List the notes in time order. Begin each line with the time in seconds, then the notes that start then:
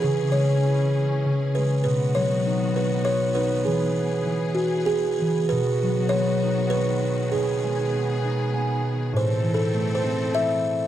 Already playing: E3 B3 E4 G#4
0.02 C#3 C#4 G#4
0.32 G#3 C#5
0.63 E4
1.25 C#3
1.55 G#3 B4
1.84 B2 D#3 B3 F#4 B4
2.15 F#3 C#5
2.46 D#4
2.76 B4
3.05 F#4 C#5
3.35 D#4 B4
3.65 E3 G#4
3.96 B3
4.26 E3
4.55 F#4
4.86 B3 G#4
5.21 E3
5.49 B2 D#3 B3 F#4 B4
5.83 F#3
6.09 B3 C#5
6.43 D#4
6.70 F#4 B4
7.32 B2 B3 G#4
7.64 G#3
7.95 B3
8.25 D#4
8.53 B3 G#5
9.13 A2 E3 C4 A4 C5
9.43 E3
9.54 A4
9.73 A3
9.95 C5
10.03 C4
10.33 E4 E5